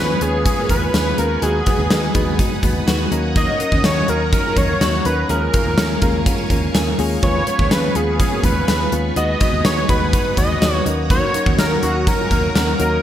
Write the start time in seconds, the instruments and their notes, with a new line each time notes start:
Already playing: picked electric bass D#2, analog polysynth F3 C#4 G#4, clean electric guitar F3 B3 C#4 G#4, fm electric piano G#3 C#4 F4 B4, analog synth lead B4, string machine B4 F5 G#5 C#6
0.21 picked electric bass D#2, fm electric piano G#3 C#4 F4 B4, clean electric guitar B3, analog synth lead G#4, closed hi-hat
0.45 fm electric piano G#3 C#4 F4 B4, clean electric guitar C#4, analog synth lead G#4, kick, closed hi-hat
0.58 analog polysynth A#3 F#4 A#4
0.69 picked electric bass D#2, fm electric piano G#3 C#4 F4 B4, analog polysynth G#3 F4 B4, clean electric guitar B3, analog synth lead B4, kick, closed hi-hat
0.93 picked electric bass D#2, fm electric piano G#3 C#4 F4 B4, clean electric guitar G#4, snare, closed hi-hat
1.18 picked electric bass D#2, fm electric piano G#3 C#4 F4 B4, clean electric guitar B3, analog synth lead A#4, closed hi-hat
1.42 picked electric bass D#2, clean electric guitar F#3 F#4, fm electric piano G#3 D#4 F#4 B4, analog synth lead G#4, string machine F#5 D#6, closed hi-hat
1.66 fm electric piano G#3 D#4 F#4 B4, clean electric guitar B3, kick, closed hi-hat
1.79 picked electric bass D#2
1.90 picked electric bass D#2, fm electric piano G#3 D#4 F#4 B4, clean electric guitar D#4, snare, closed hi-hat
2.14 picked electric bass D#2, fm electric piano G#3 D#4 F#4 B4, clean electric guitar B3, kick, closed hi-hat
2.38 fm electric piano G#3 D#4 F#4 B4, clean electric guitar D#4, kick, closed hi-hat
2.63 picked electric bass D#2, fm electric piano G#3 D#4 F#4 B4, clean electric guitar B3, kick, closed hi-hat
2.87 picked electric bass D#2, fm electric piano G#3 D#4 F#4 B4, clean electric guitar F#4, snare, closed hi-hat
3.11 picked electric bass D#2, fm electric piano F#3 C#4 D#4 A#4, clean electric guitar A#3, string machine C#5 A#5, closed hi-hat
3.36 analog polysynth F#3 D#4 A#4, clean electric guitar A#3 F#4, analog synth lead D#5, kick, closed hi-hat
3.59 fm electric piano F#3 C#4 D#4 A#4, clean electric guitar A#3, closed hi-hat
3.72 picked electric bass D#2, analog polysynth D#3 C#4 F#4, kick
3.84 picked electric bass D#2, fm electric piano F#3 C#4 D#4 A#4, clean electric guitar C#4, analog synth lead C#5, snare, closed hi-hat
4.08 picked electric bass D#2, fm electric piano F#3 C#4 D#4 A#4, clean electric guitar A#3, analog synth lead A#4, closed hi-hat
4.32 fm electric piano F#3 C#4 D#4 A#4, clean electric guitar C#4, analog synth lead A#4, kick, closed hi-hat
4.45 analog polysynth G#3 F4 G#4
4.56 picked electric bass D#2, fm electric piano F#3 C#4 D#4 A#4, analog polysynth F#3 D#4 A#4, clean electric guitar A#3, analog synth lead C#5, kick, closed hi-hat
4.81 picked electric bass D#2, fm electric piano F#3 C#4 D#4 A#4, clean electric guitar F#4, snare, closed hi-hat
5.05 picked electric bass D#2, fm electric piano F#3 C#4 D#4 A#4, clean electric guitar A#3, analog synth lead B4, closed hi-hat
5.29 picked electric bass D#2, clean electric guitar F3 G#4, fm electric piano G#3 C#4 F4 A#4, string machine A#4 F5 G#5 C#6, analog synth lead A#4, closed hi-hat
5.53 fm electric piano G#3 C#4 F4 A#4, clean electric guitar A#3, kick, closed hi-hat
5.66 picked electric bass D#2
5.77 picked electric bass D#2, fm electric piano G#3 C#4 F4 A#4, clean electric guitar C#4, snare, closed hi-hat
6.01 picked electric bass D#2, fm electric piano G#3 C#4 F4 A#4, clean electric guitar A#3, kick, closed hi-hat
6.25 fm electric piano G#3 C#4 F4 A#4, clean electric guitar B3, kick, closed hi-hat
6.38 clean electric guitar C#4
6.50 picked electric bass D#2, fm electric piano G#3 C#4 F4 A#4, clean electric guitar A#3, kick, closed hi-hat
6.74 picked electric bass D#2, fm electric piano G#3 C#4 F4 A#4, clean electric guitar G#4, snare, closed hi-hat
6.98 picked electric bass D#2, fm electric piano G#3 C#4 F4 G#4, clean electric guitar A#3, open hi-hat
7.22 picked electric bass D#2, clean electric guitar F3 G#4, fm electric piano G#3 C#4 F4 B4, analog polysynth G#3 F4 B4, string machine B4 F5, analog synth lead C#5, kick, closed hi-hat
7.46 fm electric piano G#3 C#4 F4 B4, clean electric guitar B3, closed hi-hat
7.59 picked electric bass D#2, analog polysynth F3 C#4 G#4, kick
7.71 picked electric bass D#2, fm electric piano G#3 C#4 F4 B4, clean electric guitar C#4, analog synth lead B4, snare, closed hi-hat
7.95 picked electric bass D#2, fm electric piano G#3 C#4 F4 B4, clean electric guitar B3, analog synth lead G#4, closed hi-hat
8.19 fm electric piano G#3 C#4 F4 B4, clean electric guitar C#4, analog synth lead G#4, kick, closed hi-hat
8.32 analog polysynth A#3 F#4 A#4
8.43 picked electric bass D#2, fm electric piano G#3 C#4 F4 B4, analog polysynth G#3 F4 B4, clean electric guitar B3, analog synth lead B4, kick, closed hi-hat
8.67 picked electric bass D#2, fm electric piano G#3 C#4 F4 B4, clean electric guitar G#4, snare, closed hi-hat
8.91 picked electric bass D#2, fm electric piano G#3 C#4 F4 B4, clean electric guitar B3, closed hi-hat
9.16 picked electric bass D#2, fm electric piano G#3 D#4 F#4 B4, clean electric guitar B3 F#4, analog synth lead D#5, string machine F#5 G#5 D#6, closed hi-hat
9.40 fm electric piano G#3 D#4 F#4 B4, clean electric guitar B3, kick, closed hi-hat
9.53 picked electric bass D#2
9.64 picked electric bass D#2, fm electric piano G#3 D#4 F#4 B4, clean electric guitar D#4, analog synth lead C#5, snare, closed hi-hat
9.88 picked electric bass D#2, fm electric piano G#3 D#4 F#4 B4, clean electric guitar B3, analog synth lead B4, kick, closed hi-hat
10.12 fm electric piano G#3 D#4 F#4 B4, clean electric guitar D#4, analog synth lead B4, kick, closed hi-hat
10.37 picked electric bass D#2, fm electric piano G#3 D#4 F#4 B4, clean electric guitar B3, analog synth lead D#5, kick, closed hi-hat
10.61 picked electric bass D#2, fm electric piano G#3 D#4 F#4 C#5, clean electric guitar F#4, snare, closed hi-hat
10.85 picked electric bass D#2, fm electric piano F#3 C#4 D#4 A#4, clean electric guitar A#3, string machine C#5 F#5 A#5, closed hi-hat
11.10 analog polysynth F#3 D#4 A#4, clean electric guitar A#3 F#4, analog synth lead C#5, kick, closed hi-hat
11.34 fm electric piano F#3 C#4 D#4 A#4, clean electric guitar A#3, closed hi-hat
11.46 picked electric bass D#2, analog polysynth D#3 C#4 F#4, kick
11.58 picked electric bass D#2, fm electric piano F#3 C#4 D#4 A#4, clean electric guitar C#4, analog synth lead A#4, snare, closed hi-hat
11.82 picked electric bass D#2, fm electric piano F#3 C#4 D#4 A#4, clean electric guitar A#3, analog synth lead F#4, closed hi-hat
12.06 fm electric piano F#3 C#4 D#4 A#4, clean electric guitar C#4, analog synth lead A#4, kick, closed hi-hat
12.19 analog polysynth G#3 F4 G#4
12.31 picked electric bass D#2, fm electric piano F#3 C#4 D#4 A#4, analog polysynth F#3 D#4 A#4, clean electric guitar A#3, kick, closed hi-hat
12.55 picked electric bass D#2, fm electric piano F#3 C#4 D#4 A#4, clean electric guitar F#4, snare, closed hi-hat
12.79 picked electric bass D#2, fm electric piano F#3 C#4 D#4 A#4, clean electric guitar A#3, analog synth lead A#4, closed hi-hat